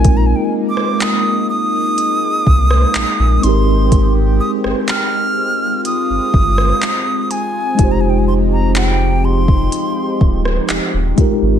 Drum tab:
HH |x---x---x---x-x-|x---x---x---x-x-|x---x---x---x-x-|
CP |----x-------x---|----x-------x---|----x-------x---|
SD |---r-------r----|---r-------r----|-----------r----|
BD |o---------o-----|o---------o-----|o------o--o---o-|